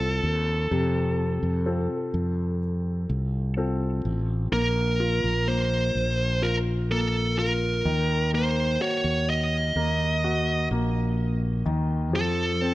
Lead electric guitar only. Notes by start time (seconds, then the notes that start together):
Already playing: A4
4.53 A#4
5.48 C5
6.43 A#4
6.92 A4
7.39 A#4
8.35 C5
8.82 C#5
9.30 D#5
12.16 A4